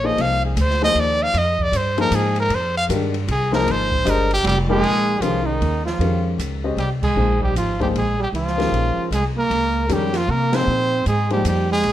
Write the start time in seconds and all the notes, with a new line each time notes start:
Already playing: A#1
0.04 F3 A#3 D#4 G#4 C5 D#5
0.17 C2 F5, ride
0.45 G#4
0.56 D2, hi-hat pedal, ride
0.60 C5
0.70 snare
0.81 F3 A#3 D#4 G#4 C5 D#5, snare
0.95 D#2, ride
1.00 D5
1.23 F5
1.34 F2, ride
1.38 D#5
1.59 D5, kick
1.72 G2, hi-hat pedal, ride
1.77 C5
1.97 F3 A#3 D#4 G#4 A#4 C5, ride
2.11 G#2, hi-hat pedal, ride
2.15 G#4
2.36 A#4, ride
2.50 F2, ride
2.55 C5
2.77 F5
2.89 G2 D#3 G#3 D4 G4 A#4, hi-hat pedal, ride
3.14 ride
3.28 C2 G#4, ride
3.52 F3 A#3 D#4 G#4 A#4 C5, snare
3.67 G#1, ride
3.71 C5
3.92 kick
4.05 G1 G#3 D4 G4 C5 D#5, hi-hat pedal, ride
4.10 A#4
4.31 G4, ride
4.43 F1 G3 G4, ride
4.69 F3 G#3 A#3 D#4 G#4 A#4
4.82 A#1, ride
5.21 C2 D#3 F3 G#3 C#4 F4 G4 A#4, hi-hat pedal, ride
5.46 D#3 D#4
5.61 D#2, ride
5.85 F3 F4, snare
5.99 F2 D#3 G#3 C#4 G4 A#4, ride
6.38 C#2, hi-hat pedal, ride
6.64 G#3 C#4 G4 C5 D#5
6.77 C2 G3 G4, ride
7.02 G#3 G#4, kick, crash
7.16 A#1 F3 A#3 D#4 G#4 C5
7.41 G3 G4, kick
7.55 G#1 F3 F4, hi-hat pedal, ride
7.80 F3 G3 A#3 D#4 G4 G#4 C5, kick, ride
7.94 A#1 G#3, ride
7.98 G#4
8.19 G3 G4
8.33 C#2 F3 F4, ride
8.47 snare
8.57 D#3 G#3 C#4 G4 A#4, snare, ride
8.72 A#1, ride
8.97 muted upright bass stroke
9.11 C2 G#3 G#4, hi-hat pedal, ride
9.37 A#3 A#4
9.50 C#2, ride
9.89 F2 D#3 G3 G#3 C#4 G4 A#4, hi-hat pedal, ride
9.93 G4
10.14 F3 F4, snare, ride
10.28 C3 A#3 A#4
10.53 F3 A#3 C4 D#4 G#4 C5, snare, ride
10.67 A#2
11.06 G#2 G#3 G#4, hi-hat pedal, ride
11.30 F3 G3 A#3 D#4 G4 G#4 C5, ride
11.45 F2 G3 G4, hi-hat pedal, ride
11.71 G#3 G#4
11.83 A#1, ride